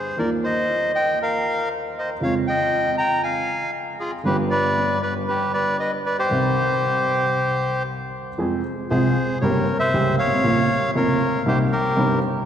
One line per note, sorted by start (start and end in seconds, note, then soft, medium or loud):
0.00 0.16 G#4 soft
0.00 0.18 C5 medium
0.17 2.12 D#2 medium
0.17 2.12 D#3 medium
0.17 2.12 F3 soft
0.17 2.13 A#3 soft
0.17 2.13 F4 medium
0.17 0.30 A#4 medium
0.17 0.30 D5 medium
0.44 0.91 C5 medium
0.44 0.92 D#5 medium
0.94 1.18 D#5 medium
0.94 1.19 G5 medium
1.22 1.69 A#4 medium
1.22 1.69 F5 medium
1.98 2.10 C5 soft
1.98 2.09 D#5 medium
2.20 2.22 F2 medium
2.20 4.15 F2 medium
2.20 4.14 C#3 soft
2.20 4.15 F3 medium
2.20 4.16 G#3 medium
2.20 4.16 F4 medium
2.20 2.35 C#5 medium
2.20 2.34 F5 medium
2.47 2.96 D#5 medium
2.47 2.95 G5 medium
2.98 3.22 G5 medium
2.98 3.22 A#5 medium
3.23 3.71 F5 medium
3.23 3.70 G#5 medium
4.00 4.12 F4 soft
4.00 4.11 G#4 medium
4.23 6.20 G1 medium
4.23 6.20 G2 medium
4.23 6.19 D3 soft
4.23 6.20 G3 soft
4.23 6.20 B3 soft
4.23 6.21 F4 medium
4.23 4.37 G4 medium
4.23 4.37 B4 medium
4.50 4.99 B4 medium
4.50 5.01 D5 medium
5.02 5.14 B4 medium
5.02 5.14 D5 medium
5.28 5.52 G4 medium
5.28 5.53 B4 medium
5.53 5.77 B4 medium
5.53 5.77 D5 medium
5.80 5.92 B4 medium
5.80 5.91 D#5 medium
6.06 6.17 B4 medium
6.06 6.17 D5 medium
6.19 7.83 G4 medium
6.19 7.83 C5 medium
6.29 8.29 C2 medium
6.29 8.29 C3 medium
6.29 8.28 D#3 medium
6.29 8.28 G3 soft
6.29 8.29 C4 medium
6.29 8.30 G4 medium
8.38 8.60 F2 medium
8.38 8.60 F3 medium
8.38 8.60 G#3 soft
8.38 8.60 C4 medium
8.38 8.60 G#4 medium
8.90 9.12 C2 medium
8.90 9.12 C3 medium
8.90 9.12 F3 medium
8.90 9.12 G#3 medium
8.90 9.12 C4 medium
8.90 9.39 G#4 medium
8.90 9.12 G#4 medium
8.90 9.38 C5 medium
9.41 9.64 G1 medium
9.41 9.64 G2 medium
9.41 9.64 C#3 medium
9.41 9.64 G3 medium
9.41 9.64 A#3 medium
9.41 9.64 G4 medium
9.41 9.78 A#4 medium
9.41 9.77 C#5 medium
9.79 10.16 C5 medium
9.79 10.15 E5 medium
9.93 10.15 C#2 medium
9.93 10.15 C#3 medium
9.93 10.15 G3 medium
9.93 10.15 A#3 soft
9.93 10.15 G4 medium
10.19 10.91 C#5 medium
10.19 10.91 F5 medium
10.26 10.32 G1 soft
10.31 10.37 G#1 medium
10.38 10.44 A1 medium
10.44 10.65 A#1 medium
10.44 10.65 A#2 medium
10.44 10.65 C#3 medium
10.44 10.65 F3 medium
10.44 10.65 A#3 medium
10.44 10.65 F4 medium
10.95 11.17 F1 medium
10.95 11.17 F2 medium
10.95 11.16 C#3 medium
10.95 11.17 F3 medium
10.95 11.16 A#3 medium
10.95 11.17 F4 medium
10.95 11.43 A#4 medium
10.95 11.43 C#5 medium
11.46 11.67 C2 medium
11.46 11.67 C3 medium
11.46 11.67 G3 medium
11.46 11.67 A#3 medium
11.46 11.68 D#4 medium
11.46 11.59 G4 medium
11.46 11.59 C5 medium
11.72 12.19 G4 medium
11.72 12.19 A#4 medium
11.96 12.18 G1 medium
11.96 12.18 G2 medium
11.96 12.18 C3 medium
11.96 12.18 G3 medium
11.96 12.18 A#3 medium
11.96 12.18 D#4 medium